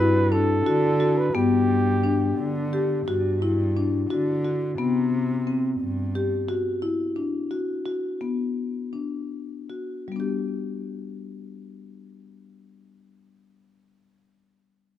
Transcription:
Already playing: G2 B4
0.00 E4
0.32 D4 A4
0.66 D3 F#4
1.00 F#4
1.18 B4
1.34 G2 B3 G4
2.04 D4
2.38 D3
2.73 G4
3.08 G2 F#4
3.42 E4
3.77 D4
4.10 D3 F#4
4.45 F#4
4.78 C3 B3
5.47 C4
5.81 G2
6.15 G4
6.49 F#4
6.82 E4
7.16 D4
7.51 F#4
7.86 F#4
8.21 B3
8.93 D4
9.70 F#4
10.08 G3 B3
10.16 D4 G4

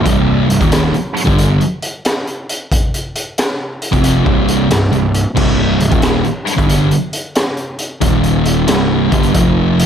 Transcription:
0.04 C1 C2 G2 C3, kick, closed hi-hat
0.49 C1 C2 G2, closed hi-hat
0.60 D#1 D#2 A#2 D#3, kick, closed hi-hat
0.72 snare, closed hi-hat
0.93 muted distorted electric guitar stroke, muted picked electric bass stroke, closed hi-hat
1.16 closed hi-hat
1.25 G1 G2 D3 G3, kick, closed hi-hat
1.38 closed hi-hat
1.61 closed hi-hat
1.82 closed hi-hat
2.05 snare, closed hi-hat
2.27 closed hi-hat
2.49 closed hi-hat
2.72 kick, closed hi-hat
2.94 closed hi-hat
3.15 closed hi-hat
3.38 snare, closed hi-hat
3.82 closed hi-hat
3.92 F1 F2 C3 F3, kick, closed hi-hat
4.04 closed hi-hat
4.25 C1 C2 G2 C3, kick
4.48 closed hi-hat
4.70 C1 C2 G2, snare, closed hi-hat
4.92 C1 C2 G2, closed hi-hat
5.14 closed hi-hat
5.35 C1 C2 G2 C3, kick, crash
5.78 C1 C2 G2, closed hi-hat
5.90 D#1 D#2 A#2 D#3, kick, closed hi-hat
6.02 snare, closed hi-hat
6.24 muted distorted electric guitar stroke, muted picked electric bass stroke, closed hi-hat
6.47 closed hi-hat
6.56 G1 G2 D3 G3, kick, closed hi-hat
6.69 closed hi-hat
6.91 closed hi-hat
7.13 closed hi-hat
7.35 snare, closed hi-hat
7.57 closed hi-hat
7.79 closed hi-hat
8.01 D#1 D#2 A#2 D#3, kick, closed hi-hat
8.23 closed hi-hat
8.45 closed hi-hat
8.68 C1 C2 G2 C3, snare, closed hi-hat
9.10 G1 G2 D3 G3, kick, closed hi-hat
9.23 closed hi-hat
9.34 F1 F2 C3 F3, kick, closed hi-hat
9.79 closed hi-hat

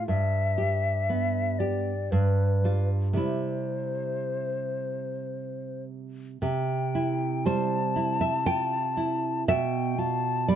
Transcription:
0.07 G2 E5
0.58 G4
1.10 B3
1.59 G4 D5
2.11 G2 B4
2.64 G3 F4
3.13 C3 G3 E4 C5
6.42 C3 G5
6.95 E4
7.45 G3 C5 A5
7.96 E4
8.21 E5
8.46 F4 G5
8.97 E4
9.48 B2 E5 G5
9.98 F4 A5
10.48 G3 D5 B5

